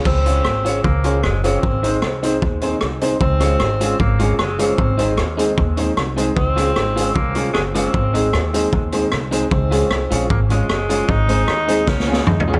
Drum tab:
CC |x-----------------------|------------------------|------------------------|------------------------|
HH |---x-----x-----x-----x--|---x-----x-----x-----x--|---x-----x-----x-----x--|---x-----x-----x-----x--|
SD |------r-----------r-----|------r-----------r-----|---r--r-----------r-----|------r-----------r-----|
T2 |------------------------|------------------------|------------------------|------------------------|
FT |------------------------|------------------------|------------------------|------------------------|
BD |o-----------o-----------|o-----------o-----------|o-----------o-----------|o-----------o-----------|

CC |------------------------|------------------------|------------------------|------------------------|
HH |---x-----x-----x-----x--|---x-----x-----x-----x--|---x-----x-----x-----x--|---x-----x--------------|
SD |---r--r-----------r-----|------r-----------r-----|------r-----------r-----|------r-----o-o-o-------|
T2 |------------------------|------------------------|------------------------|------------------o-----|
FT |------------------------|------------------------|------------------------|--------------------o-o-|
BD |o-----------o-----------|o-----------o-----------|o-----------o-----------|o-----------o-----------|